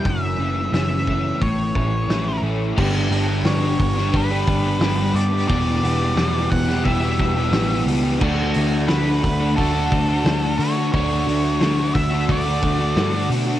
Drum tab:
CC |----------------|x---------------|----------------|x---------------|
HH |o---o---o---o---|--o-o-o-o-o-o-o-|o-o-o-o-o-o-o-o-|--o-o-o-o-o-o-o-|
SD |----o-------o---|----o--o----o---|----o--o----o---|----o-o-----o---|
BD |o-----o-o-o-----|o-----o-o-o-----|o-----o-o-o-----|o-----o-o-o-----|

CC |----------------|
HH |o-o-o-o-o-o-o-o-|
SD |----o-------o---|
BD |o-----o-o-o-----|